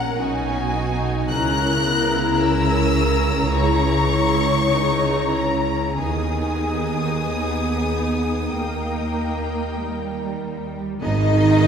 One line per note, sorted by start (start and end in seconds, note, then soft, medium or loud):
0.00 0.14 A#1 medium
0.00 0.14 A#2 medium
0.00 0.17 C#4 medium
0.00 0.15 A#4 medium
0.00 0.13 F#5 medium
0.00 0.73 F#5 loud
0.17 1.30 B1 medium
0.17 1.29 B2 medium
0.17 0.72 C#4 medium
0.17 0.73 D#4 medium
0.17 1.30 F#4 medium
0.17 1.30 G#5 medium
0.74 1.30 D#4 medium
1.29 6.02 C#2 loud
1.29 6.02 C#3 medium
1.29 1.86 C#4 medium
1.29 3.53 E4 medium
1.29 3.54 A#4 medium
1.29 2.40 A#5 medium
1.29 2.31 F#6 loud
1.86 2.41 B3 medium
2.35 2.42 F#6 medium
2.41 3.54 C#4 medium
2.41 4.68 A#5 medium
2.41 3.54 E6 loud
3.54 4.11 E4 medium
3.54 5.97 C#5 medium
3.54 5.36 C#6 loud
4.12 4.69 E4 medium
4.70 5.35 D#4 medium
4.70 5.99 E4 medium
4.70 5.99 A#5 medium
5.35 6.02 C#4 medium
5.35 6.02 A#5 medium
5.98 7.18 D#3 medium
5.98 8.52 B3 medium
5.98 8.55 D#4 medium
5.98 8.51 G#4 medium
5.98 8.51 G#5 medium
6.02 8.55 D#2 medium
6.02 9.81 D#6 medium
7.29 8.52 B3 medium
8.55 10.78 D#2 medium
8.55 10.81 A#3 medium
8.55 9.78 A#3 medium
8.55 10.78 D#4 medium
8.55 10.77 A#4 medium
8.55 10.81 G5 medium
9.80 11.03 G3 medium
11.02 11.67 G#1 loud
11.02 11.67 D#3 loud
11.02 11.10 B3 medium
11.02 11.67 D#4 loud
11.02 11.10 G#4 medium
11.02 11.67 D#5 loud
11.59 11.67 B3 medium
11.59 11.67 G#4 medium